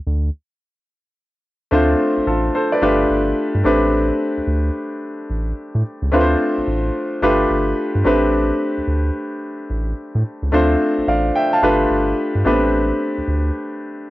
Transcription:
0.07 0.30 D2 medium
1.71 1.95 D2 loud
1.71 2.79 A3 medium
1.71 2.79 C4 medium
1.71 2.80 D4 medium
1.71 2.26 F4 medium
1.71 2.26 C5 medium
2.17 2.21 A1 medium
2.27 2.50 A1 loud
2.27 2.53 F4 medium
2.27 2.53 A4 medium
2.55 2.71 A4 medium
2.55 2.71 C5 medium
2.72 2.82 B4 medium
2.72 2.98 D5 medium
2.82 3.05 G1 loud
2.82 3.62 A3 medium
2.82 3.64 D4 medium
2.82 3.65 F4 medium
2.82 3.64 G4 medium
2.82 3.65 B4 medium
3.10 3.33 G1 medium
3.55 3.63 G2 loud
3.64 4.11 A1 loud
3.64 5.80 A3 medium
3.64 5.80 C4 medium
3.64 5.81 D4 medium
3.64 5.81 G4 medium
3.64 5.81 B4 medium
4.37 4.41 D2 soft
4.47 4.70 D2 loud
5.30 5.53 A1 medium
5.75 5.83 A2 loud
6.02 6.11 C#2 loud
6.12 6.35 D2 loud
6.12 7.20 A3 medium
6.12 7.20 C4 medium
6.12 7.20 D4 medium
6.12 7.21 F4 medium
6.12 6.21 B4 medium
6.21 7.24 C5 medium
6.57 6.61 A1 soft
6.67 6.91 A1 loud
7.22 7.45 G1 loud
7.22 8.03 A3 medium
7.22 8.04 D4 medium
7.22 8.05 F4 medium
7.22 8.05 G4 medium
7.22 8.05 B4 medium
7.50 7.73 G1 medium
7.95 8.03 G2 loud
8.04 8.51 A1 loud
8.04 10.21 A3 medium
8.04 10.21 C4 medium
8.04 10.21 D4 medium
8.04 10.22 G4 medium
8.04 10.22 B4 medium
8.77 8.81 D2 soft
8.87 9.11 D2 loud
9.70 9.93 A1 medium
10.15 10.23 A2 loud
10.43 10.51 C#2 medium
10.52 10.76 D2 loud
10.52 11.60 A3 medium
10.52 11.60 C4 medium
10.52 11.61 D4 medium
10.52 11.61 F4 medium
10.52 11.61 C5 medium
10.98 11.02 A1 medium
11.08 11.31 A1 loud
11.08 11.34 D5 medium
11.08 11.34 F5 medium
11.36 11.52 E5 medium
11.36 11.52 G5 medium
11.53 11.79 F5 medium
11.53 11.79 A5 medium
11.62 11.86 G1 loud
11.62 12.43 A3 medium
11.62 12.44 D4 medium
11.62 12.45 F4 medium
11.62 12.45 G4 medium
11.62 12.45 B4 medium
11.90 12.13 G1 medium
12.35 12.44 G2 medium
12.44 12.92 A1 loud
12.44 14.10 A3 medium
12.44 12.53 B3 medium
12.44 14.10 D4 medium
12.44 14.10 G4 medium
12.44 14.08 B4 medium
12.52 14.10 C4 medium
13.18 13.22 D2 medium
13.28 13.51 D2 loud

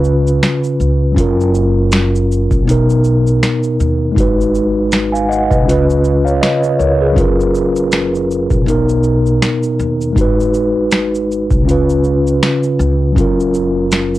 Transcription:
0.00 0.38 C#2 loud
0.00 1.11 C#3 medium
0.00 1.12 C#4 medium
0.00 1.14 F4 medium
0.00 1.15 B4 medium
0.04 shaker soft
0.27 shaker soft
0.43 finger snap medium
0.43 snare loud
0.43 closed hi-hat medium
0.43 shaker medium
0.64 shaker soft
0.80 1.18 C#2 medium
0.80 shaker soft
1.12 2.61 F#3 medium
1.12 2.62 C#4 medium
1.16 2.46 F#1 loud
1.16 2.64 F4 medium
1.16 kick loud
1.16 closed hi-hat medium
1.16 shaker medium
1.20 2.65 A#4 medium
1.41 shaker soft
1.55 shaker medium
1.92 finger snap loud
1.92 snare loud
1.92 closed hi-hat medium
1.92 shaker medium
2.15 shaker soft
2.32 shaker soft
2.51 2.65 A#1 medium
2.51 kick medium
2.51 shaker soft
2.63 4.11 B2 medium
2.63 4.13 B3 medium
2.67 3.38 B1 loud
2.67 4.14 D#4 medium
2.67 4.16 A#4 medium
2.67 closed hi-hat medium
2.67 shaker medium
2.90 shaker soft
3.04 shaker soft
3.27 shaker soft
3.43 finger snap medium
3.43 snare loud
3.43 closed hi-hat medium
3.43 shaker medium
3.63 shaker soft
3.80 4.13 D#2 loud
3.80 shaker soft
4.12 5.61 G#3 medium
4.12 5.63 D#4 medium
4.16 5.46 G#1 medium
4.16 5.64 F#4 medium
4.16 kick loud
4.16 closed hi-hat medium
4.16 shaker medium
4.20 4.92 B4 medium
4.41 shaker soft
4.55 shaker soft
4.92 finger snap loud
4.92 snare loud
4.92 closed hi-hat medium
4.92 shaker medium
5.12 5.28 F5 medium
5.12 5.28 G#5 medium
5.12 shaker soft
5.29 5.49 D#5 medium
5.29 5.49 F#5 medium
5.29 shaker soft
5.50 5.67 B1 medium
5.50 5.70 B4 medium
5.50 5.86 D#5 medium
5.50 kick loud
5.50 shaker soft
5.62 7.11 C#3 medium
5.62 7.13 C#4 medium
5.67 6.38 C#2 loud
5.67 7.14 F4 medium
5.67 6.05 B4 medium
5.67 closed hi-hat medium
5.67 shaker medium
5.90 shaker medium
6.04 shaker soft
6.25 6.41 C#5 medium
6.25 6.40 F5 medium
6.25 shaker soft
6.41 6.77 B4 medium
6.41 6.77 D#5 medium
6.41 finger snap medium
6.41 snare loud
6.41 closed hi-hat medium
6.41 shaker medium
6.64 shaker soft
6.79 7.18 C#2 medium
6.79 7.00 A#4 medium
6.79 6.99 C#5 medium
6.79 shaker soft
7.01 7.36 G#4 medium
7.01 7.36 B4 medium
7.12 8.61 F#3 medium
7.12 8.63 C#4 medium
7.16 8.46 F#1 loud
7.16 8.64 F4 medium
7.16 kick loud
7.16 closed hi-hat medium
7.16 shaker medium
7.20 8.65 A#4 medium
7.41 shaker medium
7.55 shaker medium
7.76 shaker medium
7.92 finger snap loud
7.92 snare loud
7.92 closed hi-hat medium
7.92 shaker medium
8.15 shaker soft
8.31 shaker soft
8.50 8.65 A#1 medium
8.50 kick loud
8.50 shaker medium
8.62 10.11 B2 medium
8.62 10.12 B3 medium
8.66 9.37 B1 medium
8.66 10.14 D#4 medium
8.66 10.15 A#4 medium
8.66 closed hi-hat medium
8.66 shaker medium
8.89 shaker medium
9.03 shaker soft
9.26 shaker soft
9.42 finger snap medium
9.42 snare loud
9.42 closed hi-hat medium
9.42 shaker medium
9.63 shaker soft
9.79 10.13 D#2 loud
9.79 shaker soft
10.01 shaker soft
10.12 11.46 G#1 medium
10.12 11.61 G#3 medium
10.12 11.63 D#4 medium
10.12 kick loud
10.18 11.64 F#4 medium
10.18 11.66 B4 medium
10.18 closed hi-hat medium
10.18 shaker medium
10.40 shaker soft
10.54 shaker medium
10.92 finger snap loud
10.92 snare loud
10.92 closed hi-hat medium
10.92 shaker medium
11.15 shaker soft
11.32 shaker soft
11.51 11.66 B1 medium
11.51 kick loud
11.51 shaker medium
11.62 13.11 C#3 medium
11.62 13.13 C#4 medium
11.66 12.37 C#2 loud
11.66 13.14 F4 medium
11.66 closed hi-hat medium
11.66 shaker medium
11.71 13.16 B4 medium
11.90 shaker medium
12.04 shaker soft
12.27 shaker soft
12.43 finger snap medium
12.43 snare loud
12.43 closed hi-hat medium
12.43 shaker medium
12.63 shaker soft
12.79 13.18 C#2 loud
12.79 shaker soft
13.12 14.19 F#3 medium
13.12 14.19 C#4 medium
13.12 kick loud
13.16 14.19 F#1 medium
13.16 14.19 F4 medium
13.16 closed hi-hat medium
13.16 shaker medium
13.21 14.19 A#4 medium
13.40 shaker medium
13.54 shaker medium
13.92 finger snap loud
13.92 snare loud
13.92 closed hi-hat medium
13.92 shaker medium
14.15 shaker soft

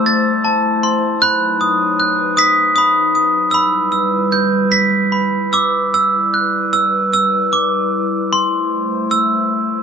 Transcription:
0.00 1.20 A3 medium
0.00 1.18 E4 medium
0.00 1.20 C5 medium
0.00 0.43 A5 medium
0.00 0.82 C6 medium
0.00 1.23 E6 medium
0.06 1.23 A6 medium
0.44 1.22 A5 medium
0.83 1.22 C6 medium
1.22 3.51 F#3 medium
1.22 3.51 D#4 medium
1.22 3.51 B4 loud
1.22 2.77 B5 medium
1.22 1.98 F#6 loud
1.61 2.36 D#6 medium
2.00 3.54 F#6 medium
2.37 2.74 D#6 medium
2.37 3.54 B6 medium
2.76 3.53 B5 medium
2.76 3.14 D#6 medium
3.15 3.54 D#6 medium
3.51 5.91 G3 medium
3.51 5.92 E4 medium
3.51 5.92 B4 medium
3.51 5.11 B5 medium
3.51 3.91 E6 medium
3.92 5.52 E6 medium
4.32 5.94 G6 medium
4.72 5.94 B6 medium
5.12 5.94 B5 medium
5.53 5.95 D6 medium
5.53 5.93 E6 medium
5.94 8.31 G3 medium
5.94 9.83 E4 medium
5.94 8.31 B4 medium
5.94 6.36 E6 medium
6.34 6.75 F#6 medium
6.73 6.91 E6 medium
7.13 7.55 E6 medium
7.53 8.35 D6 medium
8.33 9.83 A3 medium
8.33 9.83 C5 medium
8.33 9.13 C6 medium
9.11 9.83 E6 medium

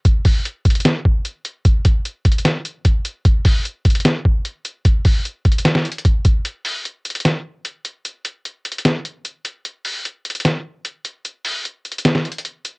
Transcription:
0.05 kick loud
0.05 closed hi-hat medium
0.25 kick loud
0.25 open hi-hat medium
0.45 closed hi-hat medium
0.65 kick medium
0.65 closed hi-hat medium
0.70 closed hi-hat medium
0.75 closed hi-hat medium
0.80 closed hi-hat medium
0.85 snare loud
0.85 closed hi-hat medium
1.05 kick loud
1.25 closed hi-hat medium
1.45 closed hi-hat medium
1.65 kick loud
1.65 closed hi-hat medium
1.85 kick loud
1.85 closed hi-hat medium
2.05 closed hi-hat medium
2.25 kick medium
2.25 closed hi-hat medium
2.32 closed hi-hat medium
2.38 closed hi-hat medium
2.45 snare loud
2.45 closed hi-hat medium
2.65 closed hi-hat medium
2.85 kick medium
2.85 closed hi-hat medium
3.05 closed hi-hat medium
3.25 kick loud
3.25 closed hi-hat medium
3.45 kick loud
3.45 open hi-hat medium
3.65 closed hi-hat medium
3.85 kick medium
3.85 closed hi-hat medium
3.90 closed hi-hat medium
3.95 closed hi-hat medium
4.00 closed hi-hat medium
4.05 snare loud
4.05 closed hi-hat medium
4.25 kick loud
4.45 closed hi-hat medium
4.65 closed hi-hat medium
4.85 kick loud
4.85 closed hi-hat medium
5.05 kick loud
5.05 open hi-hat medium
5.25 closed hi-hat medium
5.45 kick medium
5.45 closed hi-hat soft
5.52 closed hi-hat medium
5.58 closed hi-hat medium
5.65 snare loud
5.65 closed hi-hat medium
5.75 snare medium
5.85 closed hi-hat soft
5.92 closed hi-hat medium
5.98 closed hi-hat medium
6.05 kick medium
6.05 closed hi-hat medium
6.25 kick loud
6.25 closed hi-hat medium
6.45 closed hi-hat medium
6.65 open hi-hat medium
6.85 closed hi-hat medium
7.05 closed hi-hat medium
7.10 closed hi-hat medium
7.15 closed hi-hat medium
7.20 closed hi-hat medium
7.25 snare loud
7.25 closed hi-hat medium
7.65 closed hi-hat medium
7.85 closed hi-hat medium
8.05 closed hi-hat medium
8.25 closed hi-hat medium
8.45 closed hi-hat medium
8.65 closed hi-hat medium
8.72 closed hi-hat medium
8.78 closed hi-hat medium
8.85 snare loud
8.85 closed hi-hat medium
9.05 closed hi-hat medium
9.25 closed hi-hat medium
9.45 closed hi-hat medium
9.65 closed hi-hat medium
9.85 open hi-hat medium
10.05 closed hi-hat medium
10.25 closed hi-hat medium
10.30 closed hi-hat medium
10.35 closed hi-hat medium
10.40 closed hi-hat medium
10.45 snare loud
10.45 closed hi-hat medium
10.85 closed hi-hat medium
11.05 closed hi-hat medium
11.25 closed hi-hat medium
11.45 open hi-hat medium
11.65 closed hi-hat medium
11.85 closed hi-hat soft
11.92 closed hi-hat medium
11.98 closed hi-hat medium
12.05 snare loud
12.05 closed hi-hat medium
12.15 snare medium
12.25 closed hi-hat soft
12.32 closed hi-hat medium
12.38 closed hi-hat medium
12.45 closed hi-hat medium
12.65 closed hi-hat medium

